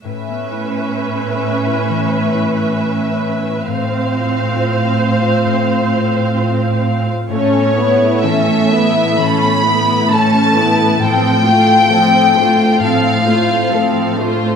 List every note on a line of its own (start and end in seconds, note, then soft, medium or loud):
0.04 3.66 A2 soft
0.04 3.64 A2 soft
0.04 3.63 C#4 soft
0.04 3.63 B4 soft
0.04 3.64 E5 soft
0.28 2.09 B3 soft
0.52 1.65 E4 soft
0.74 2.55 C#5 soft
0.98 1.43 B4 soft
1.20 3.00 E5 soft
1.44 2.78 B4 soft
1.66 2.33 E4 soft
1.89 3.72 E3 soft
2.11 3.71 B3 soft
2.34 3.45 E4 soft
2.56 3.72 C#5 soft
2.79 3.22 B4 soft
3.01 3.71 E5 soft
3.23 3.71 B4 soft
3.46 3.71 E4 soft
3.66 5.44 A2 soft
3.66 7.07 A2 soft
3.66 7.06 C4 soft
3.66 7.10 C5 soft
3.66 7.11 F5 soft
3.90 5.66 C4 soft
4.12 4.55 F4 soft
4.34 4.99 C5 soft
4.56 5.21 F4 soft
4.77 6.58 F5 soft
5.00 6.13 C5 soft
5.22 5.89 F4 soft
5.45 7.29 A2 soft
5.67 7.34 C4 soft
5.90 6.35 F4 soft
6.14 6.82 C5 soft
6.37 7.05 F4 soft
6.59 7.34 F5 soft
6.83 7.34 C5 soft
7.06 7.34 F4 soft
7.30 10.97 A2 soft
7.30 10.96 A2 soft
7.30 7.74 A3 soft
7.30 7.74 C#4 soft
7.30 7.75 C#4 soft
7.30 7.75 A4 soft
7.30 8.20 C#5 medium
7.53 7.98 B3 soft
7.76 8.22 A3 soft
7.76 8.24 B3 soft
7.76 9.61 E4 soft
7.76 8.24 E4 soft
7.76 8.25 B4 soft
7.99 8.45 B3 soft
8.22 9.16 E3 soft
8.22 8.70 A3 soft
8.22 8.71 C#4 soft
8.22 8.72 C#4 soft
8.22 8.72 A4 soft
8.22 9.18 E5 medium
8.46 8.92 B3 soft
8.69 9.17 A3 soft
8.69 9.18 B3 soft
8.69 9.11 C#4 soft
8.69 9.19 E4 soft
8.69 9.19 B4 soft
8.93 9.38 B3 soft
9.17 10.07 E3 soft
9.17 9.61 A3 soft
9.17 9.61 C#4 soft
9.17 9.62 C#4 soft
9.17 9.62 A4 soft
9.17 10.10 B5 medium
9.39 9.84 B3 soft
9.63 10.10 A3 soft
9.63 10.10 B3 soft
9.63 11.03 E4 soft
9.63 10.11 E4 soft
9.67 10.11 B4 soft
9.86 10.30 B3 soft
10.08 11.03 E3 soft
10.08 10.54 A3 soft
10.08 10.56 C#4 soft
10.08 10.55 A4 soft
10.08 11.01 A5 medium
10.31 10.74 B3 soft
10.54 11.00 A3 soft
10.54 11.01 B3 soft
10.54 10.93 C#4 soft
10.54 11.01 E4 soft
10.54 11.01 B4 soft
10.76 11.03 B3 soft
10.99 12.78 A2 soft
10.99 14.56 A2 soft
10.99 11.43 F3 soft
10.99 11.43 C4 soft
10.99 11.43 A4 soft
10.99 12.83 G5 medium
11.22 11.65 C4 soft
11.44 11.92 A3 soft
11.44 13.24 F4 soft
11.44 11.92 F4 soft
11.44 11.92 C5 soft
11.66 12.12 C4 soft
11.90 12.37 F3 soft
11.90 13.02 A3 soft
11.90 12.37 C4 soft
11.90 12.37 A4 soft
12.13 12.56 C4 soft
12.36 12.82 A3 soft
12.36 12.75 D4 soft
12.36 12.82 F4 soft
12.36 12.82 C5 soft
12.57 13.46 C4 soft
12.79 14.56 A2 soft
12.79 13.24 F3 soft
12.79 13.24 C4 soft
12.79 13.24 A4 soft
12.79 14.15 F5 medium
13.03 13.69 A3 soft
13.25 13.72 A3 soft
13.25 14.56 F4 soft
13.25 13.72 F4 soft
13.25 13.72 C5 soft
13.47 13.92 C4 soft
13.70 14.17 F3 soft
13.70 14.56 A3 soft
13.70 14.17 C4 soft
13.70 14.17 A4 soft
13.93 14.35 C4 soft
14.14 14.56 A3 soft
14.14 14.54 D4 soft
14.14 14.56 C5 soft
14.19 14.56 F4 soft
14.36 14.56 C4 soft